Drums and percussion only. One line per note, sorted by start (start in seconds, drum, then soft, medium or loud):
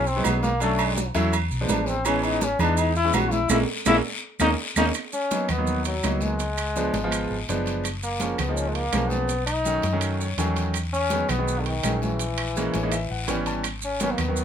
0.06 high conga soft
0.06 maracas soft
0.24 high conga medium
0.24 low timbale medium
0.24 low agogo loud
0.24 short guiro medium
0.24 claves medium
0.24 maracas medium
0.43 high conga medium
0.43 short guiro medium
0.43 maracas soft
0.60 high conga soft
0.60 low agogo medium
0.60 long guiro medium
0.60 maracas medium
0.79 high conga soft
0.79 low agogo loud
0.79 claves medium
0.79 maracas soft
0.96 high conga loud
0.96 low timbale medium
0.96 short guiro medium
0.96 maracas medium
1.15 low agogo medium
1.15 short guiro medium
1.15 maracas soft
1.32 high conga soft
1.32 low agogo loud
1.32 long guiro medium
1.32 claves medium
1.32 maracas medium
1.51 high conga soft
1.51 maracas soft
1.68 high conga loud
1.68 low timbale loud
1.68 low agogo medium
1.68 short guiro medium
1.68 maracas medium
1.86 short guiro medium
1.86 maracas soft
2.05 high conga soft
2.05 low agogo loud
2.05 long guiro medium
2.05 claves medium
2.05 maracas medium
2.23 high conga soft
2.23 low agogo medium
2.23 maracas soft
2.41 high conga loud
2.41 low timbale medium
2.41 short guiro medium
2.41 maracas medium
2.59 high conga soft
2.59 low conga medium
2.59 low agogo loud
2.59 short guiro medium
2.59 claves medium
2.59 maracas soft
2.77 high conga soft
2.77 low agogo medium
2.77 long guiro medium
2.77 maracas medium
2.95 high conga soft
2.95 maracas soft
3.13 high conga medium
3.13 low timbale medium
3.13 low agogo loud
3.13 short guiro medium
3.13 claves medium
3.13 maracas medium
3.31 high conga medium
3.31 short guiro medium
3.31 maracas soft
3.49 high conga loud
3.49 high timbale loud
3.49 long guiro loud
3.49 claves medium
3.49 maracas loud
3.85 high conga loud
3.85 high timbale loud
3.85 long guiro loud
3.85 claves loud
3.85 maracas loud
4.40 high conga loud
4.40 high timbale loud
4.40 long guiro loud
4.40 claves loud
4.40 maracas loud
4.76 high conga medium
4.76 high timbale loud
4.76 long guiro loud
4.76 claves loud
4.76 maracas loud
4.94 high conga soft
4.94 high timbale medium
4.94 long guiro medium
4.94 claves medium
4.94 maracas medium
5.13 high conga soft
5.13 maracas medium
5.31 high conga medium
5.31 high timbale medium
5.31 short guiro medium
5.31 maracas medium
5.48 high conga soft
5.48 low conga medium
5.48 high timbale medium
5.48 short guiro medium
5.48 claves medium
5.48 maracas soft
5.67 high conga soft
5.67 low conga medium
5.67 long guiro medium
5.67 maracas medium
5.85 high conga soft
5.85 high timbale medium
5.85 maracas medium
6.03 high conga medium
6.03 high timbale medium
6.03 low timbale medium
6.03 short guiro medium
6.03 claves medium
6.03 maracas medium
6.21 high conga medium
6.21 short guiro medium
6.21 maracas soft
6.39 high conga soft
6.39 high timbale medium
6.39 long guiro medium
6.39 maracas medium
6.57 high conga soft
6.57 high timbale medium
6.57 claves medium
6.57 maracas medium
6.76 high conga medium
6.76 short guiro medium
6.76 maracas medium
6.94 high conga medium
6.94 high timbale medium
6.94 short guiro medium
6.94 maracas soft
7.12 high conga soft
7.12 high timbale medium
7.12 long guiro medium
7.12 claves medium
7.12 maracas medium
7.30 high conga soft
7.48 high conga soft
7.48 high timbale medium
7.48 short guiro medium
7.48 maracas medium
7.66 high conga soft
7.66 high timbale medium
7.66 short guiro medium
7.66 maracas soft
7.84 high conga soft
7.84 high timbale medium
7.84 long guiro medium
7.84 claves medium
7.84 maracas medium
8.02 high conga soft
8.02 maracas medium
8.20 high conga medium
8.20 high timbale medium
8.20 short guiro medium
8.20 maracas medium
8.38 high conga soft
8.38 low conga medium
8.38 high timbale medium
8.38 short guiro medium
8.38 claves medium
8.38 maracas soft
8.56 high conga soft
8.56 long guiro medium
8.56 maracas medium
8.74 high conga soft
8.74 high timbale medium
8.92 high conga medium
8.92 high timbale medium
8.92 low timbale medium
8.92 short guiro medium
8.92 claves medium
8.92 maracas medium
9.10 high conga medium
9.10 short guiro medium
9.10 maracas soft
9.28 high conga soft
9.28 high timbale medium
9.28 long guiro medium
9.28 maracas medium
9.47 high conga soft
9.47 high timbale medium
9.47 claves medium
9.47 maracas medium
9.64 high conga medium
9.64 short guiro medium
9.64 maracas medium
9.82 high conga medium
9.82 high timbale medium
9.82 short guiro medium
9.82 maracas soft
10.01 high conga soft
10.01 high timbale medium
10.01 long guiro medium
10.01 claves medium
10.01 maracas medium
10.20 high conga soft
10.20 maracas medium
10.38 high timbale medium
10.38 low timbale medium
10.38 short guiro medium
10.38 maracas medium
10.56 high conga soft
10.56 high timbale medium
10.56 short guiro medium
10.56 maracas soft
10.74 high conga soft
10.74 high timbale medium
10.74 long guiro medium
10.74 claves medium
10.74 maracas medium
10.93 high conga soft
10.93 maracas medium
11.10 high conga medium
11.10 high timbale medium
11.10 short guiro medium
11.10 maracas medium
11.29 high conga soft
11.29 low conga medium
11.29 high timbale medium
11.29 short guiro medium
11.29 claves medium
11.29 maracas soft
11.48 high conga soft
11.48 long guiro medium
11.48 maracas medium
11.66 high conga soft
11.66 high timbale medium
11.84 high conga medium
11.84 high timbale medium
11.84 low timbale medium
11.84 short guiro medium
11.84 claves medium
11.84 maracas medium
12.02 high conga medium
12.02 short guiro medium
12.02 maracas soft
12.19 high conga soft
12.19 high timbale medium
12.19 long guiro medium
12.19 maracas medium
12.38 high conga soft
12.38 high timbale loud
12.38 claves medium
12.56 high conga medium
12.56 short guiro medium
12.56 maracas medium
12.74 high conga medium
12.74 high timbale medium
12.74 short guiro medium
12.74 maracas soft
12.91 high conga soft
12.91 high timbale medium
12.91 long guiro medium
12.91 claves medium
12.91 maracas medium
13.11 high conga soft
13.28 high conga soft
13.28 high timbale medium
13.28 low timbale medium
13.28 short guiro medium
13.28 maracas medium
13.46 high conga soft
13.46 high timbale medium
13.46 short guiro medium
13.46 maracas soft
13.64 high conga soft
13.64 high timbale medium
13.64 long guiro medium
13.64 claves medium
13.64 maracas medium
13.82 high conga soft
13.82 maracas medium
14.00 high conga medium
14.00 high timbale medium
14.00 short guiro medium
14.00 maracas medium
14.18 high conga soft
14.18 low conga medium
14.18 high timbale medium
14.18 short guiro medium
14.18 claves medium
14.18 maracas soft
14.36 high conga soft
14.36 long guiro medium
14.36 maracas medium